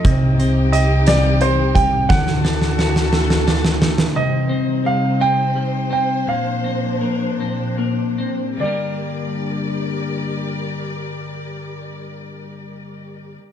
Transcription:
<<
  \new Staff \with { instrumentName = "Grand piano" } { \time 6/8 \key g \minor \tempo 4. = 55 ees''4 ees''8 d''8 c''8 g''8 | fis''2 r4 | ees''4 f''8 g''4 g''8 | f''2~ f''8 r8 |
d''2.~ | d''2. | }
  \new Staff \with { instrumentName = "String section" } { \time 6/8 \key g \minor << { g'2. | a'2. | c''2.~ | c''2. |
<g g' bes' d''>2.~ | <g g' bes' d''>2. | } \\ { <c, c ees'>2. | <d, d fis'>2. | <c g ees'>2. | <bes, f d'>2. |
r2. | r2. | } >> }
  \new Staff \with { instrumentName = "Clean electric guitar" } { \time 6/8 \key g \minor c8 c'8 g'8 g8 c'8 g8 | d8 d'8 fis'8 a8 d'8 a8 | c8 c'8 g8 c'8 g8 c'8 | bes,8 c'8 bes8 c'8 bes8 c'8 |
<g, d g bes d'>2.~ | <g, d g bes d'>2. | }
  \new DrumStaff \with { instrumentName = "Drums" } \drummode { \time 6/8 <hh bd>8 hh8 hh8 <hh sn>8 hh8 <hh bd>8 | <bd sn>16 sn16 sn16 sn16 sn16 sn16 sn16 sn16 sn16 sn16 sn16 sn16 | r4. r4. | r4. r4. |
r4. r4. | r4. r4. | }
>>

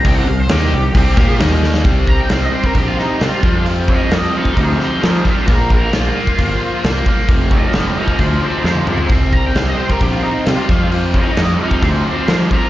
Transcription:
<<
  \new Staff \with { instrumentName = "Lead electric guitar" } { \time 4/4 \key c \minor \tempo 4 = 132 g''16 fis''16 f''16 c''16 g'2 r4 | r8 bes''16 g''16 f''16 ees''16 c''16 bes'16 g'16 f'16 ees'8 f'4 | r8 <c'' ees''>8 <c'' ees''>8 <c'' ees''>8 <ees' c''>8 <ees' c''>8 <ees' c''>8 <f' bes'>8 | <d' bes'>8 <d' bes'>8 f'2 r4 |
r8 <g' ees''>8 <g' ees''>8 <g' ees''>8 <ees' c''>8 <ees' c''>8 <ees' c''>8 <ees' c''>8 | r8 bes''16 g''16 f''16 ees''16 c''16 bes'16 g'16 f'16 ees'8 f'4 | r8 <c'' ees''>8 <c'' ees''>8 <c'' ees''>8 <ees' c''>8 <ees' c''>8 <ees' c''>8 <f' bes'>8 | }
  \new Staff \with { instrumentName = "Overdriven electric guitar" } { \clef bass \time 4/4 \key c \minor <c g c'>8 <c g>8 <ees bes ees'>8 <c g>8 <c g c'>8 <bes f' bes'>8 <ees bes ees'>4 | <c g c'>4 <c g c'>8 <c g c'>8 <c g c'>4 <c g c'>8 <f, c f>8 | <f, c f>4 <f, c f>8 <f, c f>8 <f, c f>4 <f, c f>8 <f, c f>8 | <bes, f bes>4 <bes, f bes>8 <bes, f bes>8 <bes, f bes>4 <bes, f bes>8 <bes, f bes>8 |
<f, c f>4 <f, c f>8 <f, c f>8 <f, c f>4 <f, c f>8 <f, c f>8 | <c g c'>4 <c g c'>8 <c g c'>8 <c g c'>4 <c g c'>8 <f, c f>8 | <f, c f>4 <f, c f>8 <f, c f>8 <f, c f>4 <f, c f>8 <f, c f>8 | }
  \new Staff \with { instrumentName = "Fingered electric bass" } { \clef bass \time 4/4 \key c \minor c,8 c,8 ees,8 c,8 c,8 bes,8 ees,4 | c,4 c,8 r8 bes,,8 r8 c16 r16 f,8~ | f,4 f,8 r8 d,8 r8 f8 r8 | bes,,4 bes,,8 r8 g,,8 r8 c,8 r8 |
f,,4 f,,8 r8 d,8 r8 f,8 r8 | c,4 c,8 r8 bes,,8 r8 c16 r16 f,8~ | f,4 f,8 r8 d,8 r8 f8 r8 | }
  \new DrumStaff \with { instrumentName = "Drums" } \drummode { \time 4/4 <hho bd>4 <hho sn>4 <hho bd>8 <bd sn>8 <hho sn>8 sn16 sn16 | <hho bd>8 bd8 <hho sn>8. bd16 <hho bd>8 sn8 <hho sn>8 bd8 | hho8 bd8 <hho sn>8. bd16 <hho bd>8 sn8 <hho sn>8 <bd sn>8 | <hho bd>8 bd8 <hho sn>8. bd16 <hho bd>4 <hho sn>8 bd8 |
<hho bd>8 bd8 <hho sn>8. bd16 <hho bd>4 sn16 tommh16 toml16 tomfh16 | <hho bd>8 bd8 <hho sn>8. bd16 <hho bd>4 <hho sn>8 <bd sn>8 | hho8 bd8 <hho sn>8. bd16 <hho bd>4 <hho sn>8 bd8 | }
>>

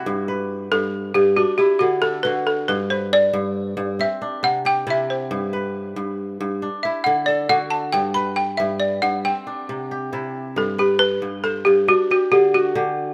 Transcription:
<<
  \new Staff \with { instrumentName = "Balafon" } { \time 12/8 \key g \major \tempo 4. = 91 r4. a'4 g'8 fis'8 g'8 fis'8 a'8 b'8 a'8 | b'8 c''8 d''4 r4 e''4 fis''8 g''8 e''8 c''8 | r2. r8 e''8 fis''8 d''8 fis''8 a''8 | g''8 b''8 g''8 e''8 d''8 fis''8 g''4 r2 |
a'8 g'8 b'4 a'8 g'8 fis'8 fis'8 g'8 fis'4 r8 | }
  \new Staff \with { instrumentName = "Kora" } { \time 12/8 \key g \major fis'16 r16 b'4. r4 d'8 e'4 a'8 fis'4~ | fis'8 b'4. r4 c'8 d'4 g'8 e'4~ | e'8 b'4. r4 d'8 e'4 a'8 fis'4~ | fis'8 b'4. r4 c'8 d'4 g'8 e'4~ |
e'8 b'4. c''4 d'8 g'4 fis'8 g'4 | }
  \new Staff \with { instrumentName = "Kora" } { \clef bass \time 12/8 \key g \major g,4 r8 g,4 g,8 r4 d4 d4 | g,4 r8 g,4 g,8 r4 c4 c4 | g,4 r8 g,4 g,8 r4 d4 d4 | g,4 r8 g,4 g,8 r4 c4 c4 |
g,4 r8 g,4 g,8 r4 d4 d4 | }
>>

